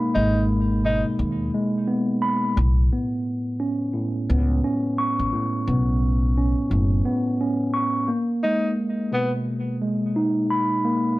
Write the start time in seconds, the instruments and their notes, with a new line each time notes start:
Already playing: tine electric piano B2 G#3 A#3 D#4 B5
0.15 upright bass G#1, tine electric piano G#3, tenor saxophone D#4
0.84 tine electric piano B2, tenor saxophone D#4
1.19 upright bass D#2
1.55 tine electric piano G#3
1.88 tine electric piano B3
2.22 tine electric piano B5
2.56 upright bass B1, tine electric piano A2
2.93 tine electric piano B3
3.60 tine electric piano C#4
3.94 tine electric piano A2
4.30 upright bass C#2, tine electric piano B3
4.64 tine electric piano C#4
4.98 tine electric piano C#6
5.19 upright bass A1
5.33 tine electric piano A2
5.67 upright bass B1, tine electric piano B3
6.37 tine electric piano C#4
6.70 upright bass F#1, tine electric piano A2
7.05 tine electric piano B3
7.41 tine electric piano C#4
7.74 tine electric piano C#6
8.08 tine electric piano A#3
8.43 tine electric piano G#3, tenor saxophone D#4
9.12 tine electric piano B2, tenor saxophone B3
9.82 tine electric piano G#3
10.16 tine electric piano D#4
10.50 tine electric piano B5
10.85 tine electric piano A#3